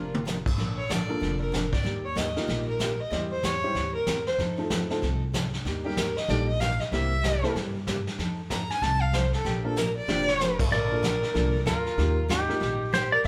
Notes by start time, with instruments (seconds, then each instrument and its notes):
Already playing: upright bass F1, steel-string acoustic guitar C3 F3 A#3 D4 A#4, fiddle F4, electric slide guitar A#4
0.14 high tom
0.25 steel-string acoustic guitar C3 F3 A#3 D4 A#4, snare, hi-hat pedal
0.46 kick, crash
0.58 upright bass A#1, steel-string acoustic guitar D3 F3 A#3 D4 A4, brush sweep, kick, snare
0.78 fiddle C#5
0.89 steel-string acoustic guitar D3 F3 A#3 D4 A4, fiddle D5, kick, snare, hi-hat pedal
1.09 upright piano A#3 D4 F4 A4 A#4
1.20 upright bass F1, steel-string acoustic guitar D3 F3 A#3 D4 A4, brush sweep, kick, snare
1.42 fiddle A#4
1.52 steel-string acoustic guitar D3 F3 A#3 D4 A4, kick, snare, hi-hat pedal
1.73 fiddle D5, kick, snare
1.83 upright bass D#2, steel-string acoustic guitar D#3 G3 A#3 F4 G4, brush sweep, kick, snare
2.05 fiddle C#5
2.15 steel-string acoustic guitar D#3 G3 A#3 F4 G4, fiddle D#5, kick, snare, hi-hat pedal
2.36 upright piano A#3 D#4 F4 G4 A#4, snare
2.47 upright bass A#1, steel-string acoustic guitar D#3 G3 A#3 F4 G4, brush sweep, kick, snare
2.68 fiddle A#4
2.79 steel-string acoustic guitar D#3 G3 A#3 F4 G4, kick, snare, hi-hat pedal
3.00 fiddle D#5
3.11 upright bass E2, steel-string acoustic guitar E3 G3 C4 E4 C5, upright piano G3 C4 E4 G4 C5, brush sweep, kick, snare
3.32 fiddle C5
3.43 steel-string acoustic guitar E3 G3 C4 E4 C5, fiddle C#5, kick, snare, hi-hat pedal
3.64 upright piano G3 C4 E4 G4 C5
3.75 upright bass D2, steel-string acoustic guitar E3 G3 C4 E4 C5, brush sweep, kick, snare
3.95 fiddle A#4
4.07 upright bass E2, steel-string acoustic guitar E3 G3 C4 E4 C5, kick, snare, hi-hat pedal
4.26 fiddle C5, snare
4.38 upright bass F2, steel-string acoustic guitar F3 C4 D#4 A4, brush sweep, kick, snare
4.58 upright piano A3 C4 D#4 F4 A4
4.70 steel-string acoustic guitar F3 C4 D#4 A4, kick, snare, hi-hat pedal
4.90 upright piano A3 C4 D#4 F4 A4, snare
5.02 upright bass C2, steel-string acoustic guitar F3 C4 D#4 A4, brush sweep, kick, snare
5.33 steel-string acoustic guitar F3 C4 D#4 A4, kick, snare, hi-hat pedal
5.53 snare
5.65 upright bass D#2, steel-string acoustic guitar D#3 G3 A#3 D#4 G4, brush sweep, kick, snare
5.85 upright piano G3 A#3 D#4 G4 A#4, fiddle G4
5.97 steel-string acoustic guitar D#3 G3 A#3 D#4 G4, fiddle A#4, kick, snare, hi-hat pedal
6.17 fiddle D#5, snare
6.28 upright bass A#1, steel-string acoustic guitar D#3 G3 A#3 D#4 G4, upright piano G3 A#3 D#4 G4 A4, fiddle D5, brush sweep, kick, snare
6.48 fiddle D#5
6.60 steel-string acoustic guitar D#3 G3 A#3 D#4 G4, fiddle F5, kick, snare, hi-hat pedal
6.80 fiddle D#5, snare
6.92 upright bass C2, steel-string acoustic guitar C3 G3 A#3 E4 G4, upright piano A#3 C4 E4 G4 A#4, fiddle E5, brush sweep, kick, snare
7.24 steel-string acoustic guitar C3 G3 A#3 E4 G4, kick, snare, hi-hat pedal
7.43 upright piano A#3 C4 E4 G4 A4, snare
7.55 upright bass G2, steel-string acoustic guitar C3 G3 A#3 E4 G4, brush sweep, kick, snare
7.87 steel-string acoustic guitar C3 G3 A#3 E4 G4, kick, snare, hi-hat pedal
8.07 snare
8.18 upright bass F2, steel-string acoustic guitar F3 C4 D#4 A4, brush sweep, kick, snare
8.50 steel-string acoustic guitar F3 C4 D#4 A4, fiddle A#5, kick, snare, hi-hat pedal
8.70 fiddle G#5, snare
8.82 upright bass C2, steel-string acoustic guitar F3 C4 D#4 A4, fiddle A5, brush sweep, kick, snare
9.02 fiddle F5
9.13 steel-string acoustic guitar F3 C4 D#4 A4, fiddle C5, kick, snare, hi-hat pedal
9.33 fiddle A4, snare
9.44 upright bass A#1, steel-string acoustic guitar C3 F3 A#3 D4 A#4, fiddle G4, brush sweep, kick, snare
9.64 upright piano A#3 C4 D4 F4 A#4, fiddle A4
9.76 steel-string acoustic guitar C3 F3 A#3 D4 A#4, fiddle A#4, snare, hi-hat pedal
9.96 fiddle D5
10.08 upright bass F1, steel-string acoustic guitar C3 F3 A#3 D4 A#4, upright piano A#3 C4 D4 F4 G4, snare
10.28 snare
10.40 steel-string acoustic guitar C3 F3 A#3 D4 A#4, snare, hi-hat pedal
10.59 kick, crash
10.71 upright bass A#1, steel-string acoustic guitar D3 F3 A#3 D4 A4, fiddle A#4, electric slide guitar D5, brush sweep, kick, snare
10.91 upright piano A#3 D4 F4 A4 A#4
11.02 steel-string acoustic guitar D3 F3 A#3 D4 A4, kick, snare, hi-hat pedal
11.23 snare
11.34 upright bass C2, steel-string acoustic guitar D3 F3 A#3 D4 A4, upright piano A#3 D4 F4 A4 A#4, brush sweep, kick, snare
11.66 upright bass D2, steel-string acoustic guitar D3 F3 A#3 D4 A4, fiddle F4, electric slide guitar A#4, kick, snare, hi-hat pedal
11.86 snare
11.97 upright bass D#2, steel-string acoustic guitar D#3 G3 A#3 F4 G4, upright piano A#3 D#4 F4 G4 A#4, brush sweep, kick, snare
12.28 steel-string acoustic guitar D#3 G3 A#3 F4 G4, fiddle D#4, electric slide guitar G4, kick, snare, hi-hat pedal
12.49 upright piano A#3 D#4 F4 G4 A#4, snare
12.60 upright bass A#1, steel-string acoustic guitar D#3 G3 A#3 F4 G4, brush sweep, kick, snare
12.93 steel-string acoustic guitar D#3 G3 A#3 F4 G4, fiddle G4, electric slide guitar C5, kick, snare, hi-hat pedal
13.12 fiddle A#4, electric slide guitar D5
13.24 steel-string acoustic guitar E3 G3, brush sweep, kick, snare